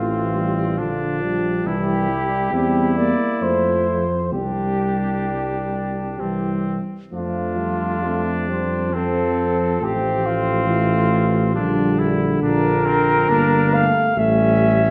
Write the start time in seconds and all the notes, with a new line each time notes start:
Already playing: A1 E3 A3 C4 F4
0.35 G3
0.78 A#1 D3 F3 D4
1.23 G3
1.65 C2 E3 E4 G4
2.09 G3
2.52 E2 G3 C4 E4
2.97 A#3 D5
3.42 F2 F3 A3 C5
3.89 F3
4.33 C2 G3 D4 G4
6.20 C2 E3 G3 C4
7.12 F2 F3 A3 D4 F4
7.58 G3
8.05 A3 C4
8.49 G3 C5
8.93 F3 C4 A4
9.81 A1 F3 A3 C4 G4
10.26 F4
10.68 E3 A3
11.55 A#1 D3 G3 D4
11.99 E4
12.42 A#1 F3 D4 A#4
12.86 C4
13.29 G1 A#3 D4
13.72 A3 F5
14.16 A1 G3 A3 C#4 E5